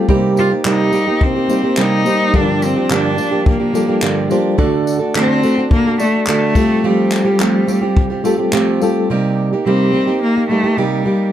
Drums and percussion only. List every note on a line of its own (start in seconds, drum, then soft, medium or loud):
0.09 kick loud
0.37 tambourine medium
0.65 clap loud
0.93 tambourine medium
1.21 kick loud
1.50 tambourine medium
1.77 clap loud
2.06 tambourine medium
2.34 kick loud
2.62 tambourine medium
2.91 clap loud
3.18 tambourine medium
3.46 kick loud
3.75 tambourine medium
4.02 clap loud
4.31 tambourine medium
4.59 kick loud
4.87 tambourine medium
5.15 clap loud
5.43 tambourine medium
5.71 kick loud
6.00 tambourine medium
6.27 clap loud
6.55 kick loud
6.55 tambourine medium
6.55 crash medium
7.11 clap medium
7.11 tambourine medium
7.40 clap loud
7.68 tambourine medium
7.97 kick loud
8.25 tambourine medium
8.53 clap loud
8.82 tambourine medium